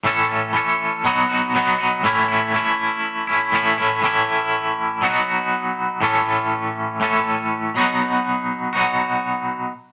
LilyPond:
\new Staff \with { instrumentName = "Clean electric guitar" } { \time 4/4 \key a \lydian \tempo 4 = 121 <a, e a cis' a'>8 <a cis' a'>8 <e a cis' a'>4 <b, fis b dis' fis'>8 <b dis' fis'>8 <b, fis b dis' fis'>8 <b dis' fis'>8 | <a, e a cis' e'>8 <a cis' e'>8 <e a cis' e'>4. <a cis' e'>8 <a, e a cis' e'>8 <a, e a cis' e'>8 | <a, e a cis' e'>2 <b, fis b dis' fis'>2 | <a, e a cis' a'>2 <a, e a cis' a'>4. <b, fis b dis' fis'>8~ |
<b, fis b dis' fis'>4. <b, fis b dis' fis'>2 r8 | }